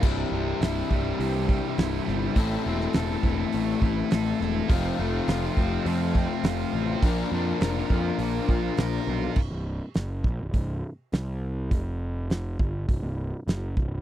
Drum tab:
CC |x---------------|----------------|----------------|----------------|
HH |----o---o---o---|o---o---o---o---|o---o---o---o---|o---o---o---o---|
SD |----o-------o-o-|---oo-------o-o-|----o-------o---|----o-------o---|
BD |o-----o---o-----|o-----o---o-----|o-----o---o-----|o-----o---o-----|

CC |x---------------|----------------|
HH |----o---o---o---|o---o---o---o---|
SD |----o-------o---|----o-------o---|
BD |o-----o-o-------|o-----o-o-----o-|